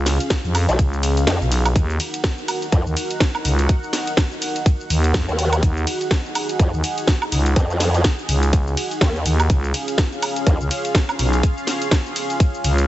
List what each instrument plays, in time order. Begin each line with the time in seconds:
Already playing: fm bass C#2, analog synth pad C#4 F4 G#4 F5
0.06 snare, open hi-hat, ride, shaker
0.20 closed hi-hat, shaker
0.30 kick, snare, closed hi-hat, ride, shaker
0.44 fm bass F2, shaker
0.55 open hi-hat, ride, high woodblock, shaker
0.69 wobble bass B1, closed hi-hat, shaker
0.79 fm bass C#2, kick, closed hi-hat, ride, shaker
0.93 shaker
1.03 open hi-hat, ride, shaker
1.17 closed hi-hat, shaker
1.27 wobble bass F2, snare, closed hi-hat, ride, shaker
1.41 fm bass B1, shaker
1.52 open hi-hat, ride, shaker
1.66 closed hi-hat, high woodblock, shaker
1.76 fm bass D#2, analog synth pad D#4 F#4 A#4 F#5, kick, closed hi-hat, ride, shaker
1.90 shaker
2.00 open hi-hat, ride, shaker
2.14 closed hi-hat, shaker
2.24 kick, snare, closed hi-hat, ride, shaker
2.38 shaker
2.48 open hi-hat, ride, high woodblock, shaker
2.62 closed hi-hat, shaker
2.72 wobble bass F2, kick, closed hi-hat, ride, shaker
2.86 fm bass D#2, shaker
2.97 open hi-hat, ride, shaker
3.11 closed hi-hat, shaker
3.20 kick, snare, closed hi-hat, ride, shaker
3.35 high woodblock, shaker
3.45 fm bass C#2, open hi-hat, ride, shaker
3.59 closed hi-hat, shaker
3.69 kick, closed hi-hat, ride, shaker
3.83 shaker
3.93 snare, open hi-hat, ride, shaker
4.07 closed hi-hat, shaker
4.17 kick, snare, closed hi-hat, ride, shaker
4.32 shaker
4.42 open hi-hat, ride, shaker
4.56 closed hi-hat, shaker
4.66 kick, closed hi-hat, ride, shaker
4.80 shaker
4.90 fm bass D#2, open hi-hat, ride, shaker
5.04 closed hi-hat, shaker
5.14 fm bass F2, kick, snare, closed hi-hat, ride, shaker
5.28 wobble bass D#2, shaker
5.39 open hi-hat, ride, shaker
5.53 closed hi-hat, high woodblock, shaker
5.63 fm bass D#2, analog synth pad G#4, kick, closed hi-hat, ride, shaker
5.77 shaker
5.87 open hi-hat, ride, shaker
6.01 closed hi-hat, shaker
6.11 kick, snare, closed hi-hat, ride, shaker
6.25 shaker
6.35 open hi-hat, ride, high woodblock, shaker
6.49 closed hi-hat, shaker
6.59 wobble bass F2, kick, closed hi-hat, ride, shaker
6.74 fm bass D#2, shaker
6.84 open hi-hat, ride, shaker
6.98 closed hi-hat, shaker
7.07 kick, snare, closed hi-hat, ride, shaker
7.22 high woodblock, shaker
7.32 fm bass C#2, open hi-hat, ride, shaker
7.46 closed hi-hat, shaker
7.56 wobble bass F2, kick, closed hi-hat, ride, shaker
7.70 shaker
7.80 snare, open hi-hat, ride, shaker
7.94 closed hi-hat, shaker
8.04 kick, snare, closed hi-hat, ride, shaker
8.19 shaker
8.29 fm bass C#2, open hi-hat, ride, shaker
8.43 closed hi-hat, shaker
8.53 kick, closed hi-hat, ride, shaker
8.67 shaker
8.77 open hi-hat, ride, shaker
8.91 closed hi-hat, shaker
9.01 wobble bass D#2, kick, snare, closed hi-hat, ride, shaker
9.16 shaker
9.26 fm bass D#2, open hi-hat, ride, shaker
9.40 closed hi-hat, high woodblock, shaker
9.50 fm bass C#2, analog synth pad C#4 F4 F5, kick, closed hi-hat, ride, shaker
9.64 shaker
9.74 open hi-hat, ride, shaker
9.88 closed hi-hat, shaker
9.98 kick, snare, closed hi-hat, ride, shaker
10.12 shaker
10.22 open hi-hat, ride, high woodblock, shaker
10.36 closed hi-hat, shaker
10.47 wobble bass D#2, kick, closed hi-hat, ride, shaker
10.61 fm bass C#2, shaker
10.71 open hi-hat, ride, shaker
10.85 closed hi-hat, shaker
10.95 kick, snare, closed hi-hat, ride, shaker
11.09 high woodblock, shaker
11.19 fm bass B1, open hi-hat, ride, shaker
11.33 closed hi-hat, shaker
11.43 kick, closed hi-hat, ride, shaker
11.58 shaker
11.67 snare, open hi-hat, ride, shaker
11.82 closed hi-hat, shaker
11.91 kick, snare, closed hi-hat, ride, shaker
12.06 shaker
12.16 open hi-hat, ride, shaker
12.30 closed hi-hat, shaker
12.40 kick, closed hi-hat, ride, shaker
12.54 shaker
12.64 fm bass C#2, open hi-hat, ride, shaker
12.78 closed hi-hat, shaker